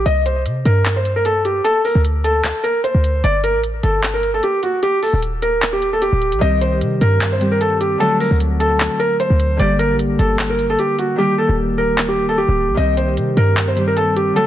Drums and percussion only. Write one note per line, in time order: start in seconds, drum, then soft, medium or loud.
0.06 closed hi-hat medium
0.26 closed hi-hat medium
0.46 closed hi-hat medium
0.66 closed hi-hat medium
0.85 clap loud
0.85 closed hi-hat medium
1.05 closed hi-hat medium
1.25 closed hi-hat medium
1.45 closed hi-hat medium
1.65 closed hi-hat medium
1.85 open hi-hat medium
2.05 closed hi-hat medium
2.24 closed hi-hat medium
2.44 clap loud
2.44 closed hi-hat medium
2.64 closed hi-hat medium
2.84 closed hi-hat medium
3.04 closed hi-hat medium
3.24 closed hi-hat medium
3.44 closed hi-hat medium
3.64 closed hi-hat medium
3.83 closed hi-hat medium
4.03 clap loud
4.03 closed hi-hat medium
4.23 closed hi-hat medium
4.43 closed hi-hat medium
4.63 closed hi-hat medium
4.83 closed hi-hat medium
5.03 open hi-hat medium
5.22 closed hi-hat medium
5.42 closed hi-hat medium
5.62 clap loud
5.62 closed hi-hat medium
5.82 closed hi-hat medium
6.02 closed hi-hat medium
6.22 closed hi-hat soft
6.32 closed hi-hat medium
6.42 closed hi-hat medium
6.62 closed hi-hat medium
6.81 closed hi-hat medium
7.01 closed hi-hat medium
7.21 clap loud
7.21 closed hi-hat medium
7.41 closed hi-hat medium
7.61 closed hi-hat medium
7.81 closed hi-hat medium
8.01 closed hi-hat medium
8.21 open hi-hat medium
8.40 closed hi-hat medium
8.60 closed hi-hat medium
8.80 clap loud
8.80 closed hi-hat medium
9.00 closed hi-hat medium
9.20 closed hi-hat medium
9.40 closed hi-hat medium
9.60 closed hi-hat medium
9.79 closed hi-hat medium
9.99 closed hi-hat medium
10.19 closed hi-hat medium
10.39 clap loud
10.39 closed hi-hat medium
10.59 closed hi-hat medium
10.79 closed hi-hat medium
10.99 closed hi-hat medium
11.98 clap loud
12.77 closed hi-hat medium
12.97 closed hi-hat medium
13.17 closed hi-hat medium
13.37 closed hi-hat medium
13.57 clap loud
13.57 closed hi-hat medium
13.77 closed hi-hat medium
13.97 closed hi-hat medium
14.17 closed hi-hat medium
14.36 closed hi-hat medium